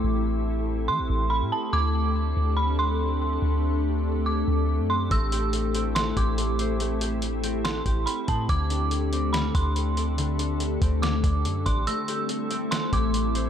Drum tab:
HH |--------|--------|--------|xxxxxxxx|
SD |--------|--------|--------|----o---|
BD |--------|--------|--------|o----o--|

HH |xxxxxxxx|xxxxxxxx|xxxxxxxx|xxxxxxxx|
SD |----o---|----o---|----o---|----o---|
BD |-----o-o|o----o--|---o-o-o|-----o--|